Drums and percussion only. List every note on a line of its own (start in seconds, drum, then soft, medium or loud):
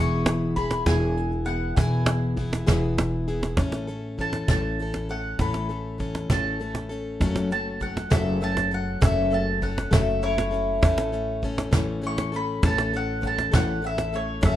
0.26 cajon slap medium
0.26 closed hi-hat soft
0.57 kick medium
0.57 closed hi-hat soft
0.71 cajon slap medium
0.86 cajon bass medium
0.86 cajon slap soft
0.86 snare medium
0.86 closed hi-hat medium
1.17 closed hi-hat soft
1.31 cajon slap soft
1.47 closed hi-hat soft
1.77 kick medium
1.77 cajon bass medium
1.77 closed hi-hat medium
2.06 cajon slap medium
2.06 closed hi-hat soft
2.37 kick medium
2.37 closed hi-hat medium
2.53 cajon slap medium
2.67 cajon bass medium
2.67 snare medium
2.67 closed hi-hat medium
2.84 cajon slap soft
2.98 cajon slap medium
2.98 closed hi-hat medium
3.28 closed hi-hat medium
3.43 cajon slap medium
3.57 cajon bass medium
3.57 kick medium
3.57 cajon slap soft
3.57 closed hi-hat medium
3.72 cajon slap medium
3.88 closed hi-hat soft
4.19 kick medium
4.19 closed hi-hat soft
4.33 cajon slap medium
4.48 cajon bass medium
4.48 snare medium
4.48 closed hi-hat medium
4.79 closed hi-hat soft
4.94 cajon slap medium
5.09 closed hi-hat soft
5.39 cajon bass medium
5.39 kick medium
5.39 cajon slap soft
5.39 closed hi-hat medium
5.54 cajon slap medium
5.69 closed hi-hat soft
6.00 kick medium
6.00 closed hi-hat soft
6.15 cajon slap medium
6.30 cajon bass medium
6.30 snare medium
6.30 closed hi-hat medium
6.61 closed hi-hat medium
6.75 cajon slap medium
6.91 closed hi-hat medium
7.20 kick medium
7.20 cajon bass medium
7.20 cajon slap soft
7.20 closed hi-hat medium
7.36 cajon slap medium
7.51 closed hi-hat soft
7.81 kick medium
7.81 closed hi-hat medium
7.97 cajon slap medium
8.10 cajon bass medium
8.10 snare medium
8.10 closed hi-hat medium
8.41 closed hi-hat soft
8.57 cajon slap medium
8.71 closed hi-hat soft
9.01 kick medium
9.01 cajon bass loud
9.01 closed hi-hat medium
9.31 closed hi-hat soft
9.62 kick medium
9.62 closed hi-hat soft
9.78 cajon slap medium
9.92 cajon bass loud
9.92 snare medium
9.92 closed hi-hat medium
10.09 cajon slap soft
10.23 closed hi-hat soft
10.38 cajon slap medium
10.54 closed hi-hat soft
10.83 cajon bass loud
10.83 kick medium
10.83 cajon slap soft
10.83 closed hi-hat medium
10.98 cajon slap medium
11.13 closed hi-hat soft
11.43 kick medium
11.43 closed hi-hat soft
11.58 cajon slap medium
11.73 cajon bass medium
11.73 snare medium
11.73 closed hi-hat medium
12.03 closed hi-hat medium
12.18 cajon slap medium
12.33 closed hi-hat medium
12.63 kick medium
12.63 cajon bass medium
12.63 cajon slap soft
12.63 closed hi-hat medium
12.78 cajon slap medium
12.93 closed hi-hat medium
13.23 kick medium
13.23 closed hi-hat medium
13.38 cajon slap medium
13.53 cajon bass medium
13.53 snare medium
13.53 closed hi-hat medium
13.84 closed hi-hat medium
13.98 cajon slap medium
14.13 closed hi-hat medium
14.43 cajon bass medium
14.43 kick medium
14.43 cajon slap soft
14.43 closed hi-hat medium